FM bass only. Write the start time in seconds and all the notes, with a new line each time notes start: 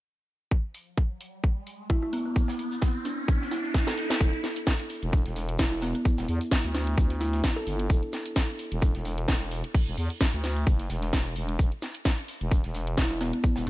4.21 E1
5.03 E1
5.26 E1
5.59 E1
6.18 E1
6.28 E2
6.64 D2
6.98 D2
7.67 G1
7.90 E1
8.72 E1
8.95 E1
9.28 E1
9.87 E1
9.98 E2
10.33 D2
10.67 F#1
10.90 E1
11.36 E1
11.59 E1
12.41 E1
12.64 E1
12.98 E1
13.56 E1